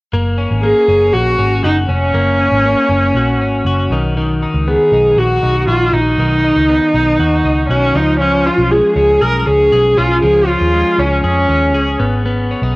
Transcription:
0.12 0.45 F#1 medium
0.12 0.62 A#3 medium
0.37 0.87 C#4 medium
0.50 0.72 G#1 medium
0.62 2.13 A#3 medium
0.62 1.14 G#4 medium
0.88 1.10 F#1 medium
0.88 1.37 C#4 medium
1.13 1.35 A#1 medium
1.13 1.64 F#4 medium
1.39 1.60 G#1 medium
1.39 1.88 C#4 medium
1.64 1.85 F#1 medium
1.64 1.76 D#4 medium
1.64 3.16 F#4 medium
1.89 2.10 F1 medium
1.89 2.39 C#4 medium
1.89 3.88 C#4 medium
2.14 2.46 F#1 medium
2.14 2.64 A#3 medium
2.40 2.90 C#4 medium
2.52 2.74 G#1 medium
2.65 3.97 A#3 soft
2.89 3.11 F#1 medium
2.89 3.40 C#4 medium
3.15 3.40 A#1 medium
3.15 3.66 F#4 medium
3.40 3.62 G#1 medium
3.40 3.97 C#4 medium
3.65 3.87 F#1 medium
3.65 5.18 F#4 medium
3.90 4.44 B1 medium
3.90 4.16 D#3 medium
4.17 6.18 D#3 medium
4.43 4.92 D#4 medium
4.54 4.76 C#2 medium
4.68 6.68 B3 medium
4.68 5.20 G#4 medium
4.92 5.14 B1 medium
4.92 5.42 D#4 medium
5.17 5.39 A#1 medium
5.17 5.68 F#4 medium
5.17 5.67 F#4 medium
5.43 5.64 B1 medium
5.43 5.92 D#4 medium
5.68 5.89 A#1 medium
5.68 5.96 F4 medium
5.68 7.19 F#4 medium
5.93 6.15 A#1 medium
5.93 6.43 D#4 medium
5.93 7.69 D#4 medium
6.18 6.51 B1 medium
6.18 7.95 D#3 medium
6.44 6.94 D#4 medium
6.56 6.78 C#2 medium
6.69 8.01 B3 medium
6.94 7.16 B1 medium
6.94 7.44 D#4 medium
7.19 7.41 D#2 medium
7.19 7.69 F#4 medium
7.44 7.66 C#2 medium
7.44 8.01 D#4 medium
7.69 7.91 B1 medium
7.69 7.97 C#4 medium
7.69 8.01 F#4 medium
7.94 8.48 C#2 medium
7.94 8.19 F3 medium
7.94 8.19 D#4 medium
8.20 10.21 F3 medium
8.20 8.48 C#4 medium
8.46 8.95 C#4 medium
8.46 8.72 F4 medium
8.58 8.80 B1 medium
8.71 10.73 G#3 medium
8.71 8.95 G#4 medium
8.95 9.18 C#2 medium
8.95 9.46 C#4 medium
8.95 9.22 G#4 medium
9.21 9.43 B1 medium
9.21 9.72 G#4 medium
9.21 9.39 A#4 medium
9.39 9.48 A#4 medium
9.46 9.68 C#2 medium
9.46 9.96 C#4 medium
9.46 9.99 G#4 medium
9.72 9.94 B1 medium
9.72 11.23 G#4 medium
9.97 10.19 B1 medium
9.97 10.46 C#4 medium
9.97 10.21 F4 medium
10.22 10.55 C#2 loud
10.22 12.04 F3 medium
10.22 10.48 G#4 medium
10.47 10.98 C#4 medium
10.47 11.00 F4 medium
10.61 10.82 D#2 medium
10.74 11.99 G#3 medium
10.98 11.20 C#2 medium
10.98 11.23 C#4 medium
10.98 11.48 C#4 medium
11.23 11.45 F2 medium
11.23 11.95 C#4 medium
11.23 11.74 G#4 medium
11.48 11.74 D#2 medium
11.48 12.04 C#4 medium
11.74 11.95 C#2 medium
11.74 12.76 G#4 medium
12.00 12.53 G#1 medium
12.00 12.24 B3 medium
12.26 12.74 B3 medium
12.51 12.63 C#4 medium
12.62 12.76 B1 medium
12.62 12.76 D#4 soft

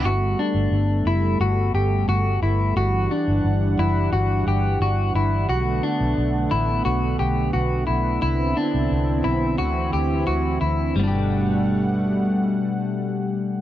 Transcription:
0.00 0.34 G1 medium
0.00 2.73 B3 medium
0.05 2.75 G3 medium
0.05 2.75 A3 medium
0.05 0.39 F#4 medium
0.05 2.75 A4 medium
0.39 1.07 D4 medium
0.54 0.70 G1 medium
0.71 1.02 G1 medium
1.05 1.36 F#1 medium
1.05 1.40 E4 medium
1.40 1.70 G1 medium
1.40 1.74 F#4 medium
1.74 2.04 G1 medium
1.74 2.08 G4 medium
2.08 2.38 G1 medium
2.08 2.42 F#4 medium
2.42 2.72 G1 medium
2.42 2.76 E4 medium
2.76 3.06 G1 medium
2.76 5.47 E3 medium
2.76 5.47 G3 medium
2.76 5.47 D4 medium
2.76 3.11 F#4 medium
2.76 8.19 F#5 medium
3.11 3.79 D4 medium
3.28 3.43 G1 medium
3.44 3.75 G1 medium
3.79 4.09 F#1 medium
3.79 4.12 E4 medium
4.12 4.43 G1 medium
4.12 4.47 F#4 medium
4.47 4.77 G1 medium
4.47 4.81 G4 medium
4.80 5.11 G1 medium
4.80 5.15 F#4 medium
5.14 5.45 G1 medium
5.14 5.49 E4 medium
5.49 5.79 B1 medium
5.49 10.92 D3 medium
5.49 8.20 A3 medium
5.49 9.55 B3 medium
5.49 5.84 F#4 medium
5.83 6.52 D4 medium
6.01 6.16 B1 medium
6.18 6.48 B1 medium
6.51 6.82 A1 medium
6.51 6.85 E4 medium
6.85 7.16 B1 medium
6.85 7.19 F#4 medium
7.19 7.50 B1 medium
7.19 7.53 G4 medium
7.53 7.84 B1 medium
7.53 7.86 F#4 medium
7.87 8.18 B1 medium
7.87 8.21 E4 medium
8.22 8.53 C2 medium
8.22 10.93 C4 medium
8.22 8.56 E4 medium
8.22 9.58 E4 medium
8.57 9.25 D4 medium
8.74 8.89 C2 medium
8.91 9.21 C2 medium
9.24 9.55 B1 medium
9.24 9.58 E4 medium
9.58 9.89 D2 medium
9.58 10.94 E3 medium
9.58 10.94 E4 medium
9.58 9.93 F#4 medium
9.93 10.23 D2 medium
9.93 10.26 G4 medium
10.27 10.57 D2 medium
10.27 10.60 F#4 medium
10.61 10.91 D2 medium
10.61 10.95 E4 medium
10.95 13.61 G1 medium
10.95 13.61 B2 medium
10.95 13.61 G3 medium
10.95 13.61 A3 medium
10.95 13.61 F#5 medium
11.00 11.03 B3 medium
11.00 13.61 D4 medium
11.08 13.61 G4 medium

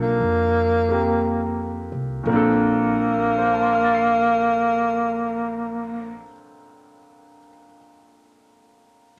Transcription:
0.00 0.18 B1 medium
0.00 2.27 F3 soft
0.00 0.87 A#3 soft
0.00 1.93 A#3 medium
0.00 0.89 C4 soft
0.00 2.27 D4 soft
0.00 2.27 A4 soft
0.20 1.88 F2 medium
0.89 2.26 A#3 soft
0.89 2.28 C4 soft
0.89 2.28 G4 soft
1.92 2.24 C2 medium
2.23 6.18 A#1 medium
2.23 6.20 A#2 medium
2.23 6.24 A#3 medium
2.29 6.24 A#3 medium
2.29 6.26 C4 medium
2.29 6.30 D4 medium
2.36 6.33 A4 medium
3.38 7.31 C5 soft
3.45 7.38 F5 soft
3.54 7.46 A5 soft
3.62 7.55 C6 soft
3.73 7.66 F6 soft
3.85 7.77 A6 soft
3.95 7.87 C7 soft

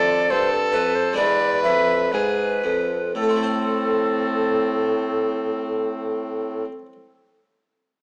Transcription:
0.00 0.27 F2 medium
0.00 0.31 F2 medium
0.00 1.14 C4 medium
0.00 1.14 E4 medium
0.00 0.29 A4 medium
0.00 0.32 D5 medium
0.30 0.70 G2 medium
0.30 0.76 G2 medium
0.30 1.17 A4 medium
0.30 0.52 C5 loud
0.53 0.59 A4 medium
0.72 1.15 F2 medium
0.72 1.19 F2 medium
0.72 0.97 B4 medium
0.95 1.16 C5 medium
1.13 1.61 G#3 medium
1.13 3.10 D4 medium
1.13 3.11 E4 medium
1.13 1.63 D5 loud
1.18 1.61 E2 medium
1.18 1.65 E2 medium
1.18 2.15 B4 medium
1.63 2.10 F2 medium
1.63 2.13 F2 medium
1.63 2.13 E5 loud
2.12 2.60 G#2 medium
2.12 2.63 G#2 medium
2.12 2.64 G#4 medium
2.12 3.14 B4 medium
2.64 3.12 F2 medium
2.64 3.15 F2 medium
3.15 6.65 A2 medium
3.15 6.65 C4 medium
3.15 6.65 A4 medium
3.22 6.72 A3 medium
3.29 6.79 C4 medium
3.36 6.86 E4 medium
3.43 6.93 C5 medium

